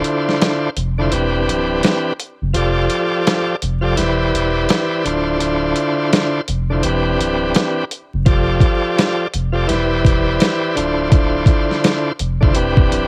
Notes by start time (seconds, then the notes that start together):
Already playing: D3 D4 E4 F4 C5
0.04 closed hi-hat
0.29 snare
0.42 snare, closed hi-hat
0.77 F1, closed hi-hat
0.98 D3 D4 E4 F4 C5
1.11 E1 E3 C4 D4 G4 B4, closed hi-hat
1.48 D1, closed hi-hat
1.83 snare, closed hi-hat
2.20 closed hi-hat
2.42 F#1
2.54 F1 F3 F4 G4 A4 D5, closed hi-hat
2.90 closed hi-hat
3.27 snare, closed hi-hat
3.62 F1, closed hi-hat
3.81 F3 F4 G4 A4 D5
3.96 E1 E3 E4 G4 B4 C5 D5, snare, closed hi-hat
4.34 E1, closed hi-hat
4.69 snare, closed hi-hat
5.04 D1 D3 D4 E4 F4 C5, closed hi-hat
5.39 D3 D4 E4 F4 C5, closed hi-hat
5.76 closed hi-hat
6.13 snare, closed hi-hat
6.48 F1, closed hi-hat
6.70 D3 D4 E4 F4 C5
6.83 E1 E3 C4 D4 G4 B4, closed hi-hat
7.20 D1, closed hi-hat
7.55 snare, closed hi-hat
7.91 closed hi-hat
8.14 F#1
8.25 F1 F3 F4 G4 A4 D5, kick, closed hi-hat
8.60 kick, closed hi-hat
8.98 snare, closed hi-hat
9.34 F1, closed hi-hat
9.52 F3 F4 G4 A4 D5
9.67 E1 E3 E4 G4 B4 C5 D5, snare, closed hi-hat
10.05 E1, kick, closed hi-hat
10.40 snare, closed hi-hat
10.76 D1 D3 D4 E4 F4 C5, closed hi-hat
11.10 D3 D4 E4 F4 C5, kick, closed hi-hat
11.46 kick, closed hi-hat
11.71 snare
11.84 snare, closed hi-hat
12.19 F1, closed hi-hat
12.41 D3 D4 E4 F4 C5, kick
12.54 E1 E3 C4 D4 G4 B4, closed hi-hat
12.77 kick
12.91 D1, closed hi-hat